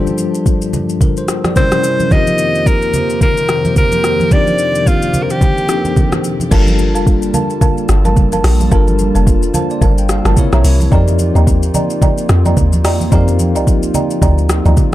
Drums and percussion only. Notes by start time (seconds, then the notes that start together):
0.07 high conga, shaker
0.18 shaker
0.35 shaker
0.46 kick, shaker
0.62 shaker
0.73 high conga, low conga, shaker
0.89 shaker
1.01 kick, low conga, shaker
1.17 shaker
1.28 cross-stick, shaker
1.44 cross-stick, high conga, shaker
1.56 kick, low conga, shaker
1.72 cross-stick, high conga, shaker
1.84 shaker
2.00 high conga, shaker
2.11 kick, low conga, shaker
2.27 high conga, shaker
2.38 shaker
2.55 shaker
2.66 kick, shaker
2.82 shaker
2.94 high conga, low conga, shaker
3.10 shaker
3.21 kick, low conga, shaker
3.37 shaker
3.49 cross-stick, shaker
3.65 high conga, shaker
3.76 kick, low conga, shaker
3.92 high conga, shaker
4.04 cross-stick, shaker
4.20 high conga, shaker
4.31 kick, low conga, shaker
4.47 high conga, shaker
4.58 shaker
4.75 shaker
4.86 kick, shaker
5.02 shaker
5.14 high conga, low conga, shaker
5.30 shaker
5.41 kick, low conga, shaker
5.58 shaker
5.69 cross-stick, shaker
5.85 high conga, shaker
5.96 kick, low conga, shaker
6.12 cross-stick, high conga, shaker
6.24 shaker
6.40 high conga, shaker
6.52 kick, crash, shaker
6.67 high conga, shaker
6.79 high conga, shaker
6.95 shaker
7.07 kick, shaker
7.22 shaker
7.34 high conga, low conga, shaker
7.50 shaker
7.61 kick, low conga, shaker
7.78 shaker
7.89 cross-stick, shaker
8.05 high conga, shaker
8.17 kick, low conga, shaker
8.32 high conga, shaker
8.44 cross-stick, open hi-hat, shaker
8.60 high conga, shaker
8.72 kick, shaker
8.87 high conga, shaker
8.99 high conga, shaker
9.15 shaker
9.27 kick, shaker
9.43 shaker
9.54 high conga, low conga, shaker
9.70 shaker
9.82 kick, low conga, shaker
9.98 shaker
10.09 cross-stick, shaker
10.25 cross-stick, high conga, shaker
10.37 kick, low conga, shaker
10.52 cross-stick, high conga, shaker
10.65 open hi-hat, shaker
10.80 high conga, shaker
10.92 kick, shaker
11.08 high conga, shaker
11.19 high conga, shaker
11.36 shaker
11.47 kick, shaker
11.63 shaker
11.74 high conga, low conga, shaker
11.90 shaker
12.02 kick, low conga, shaker
12.18 shaker
12.29 cross-stick, shaker
12.45 high conga, shaker
12.57 kick, low conga, shaker
12.73 high conga, shaker
12.85 cross-stick, open hi-hat, shaker
13.01 high conga, shaker
13.12 kick, shaker
13.28 high conga, shaker
13.39 high conga, shaker
13.56 shaker
13.67 kick, shaker
13.83 shaker
13.94 high conga, low conga, shaker
14.10 shaker
14.22 kick, low conga, shaker
14.38 shaker
14.49 cross-stick, shaker
14.66 high conga, shaker
14.77 kick, low conga, shaker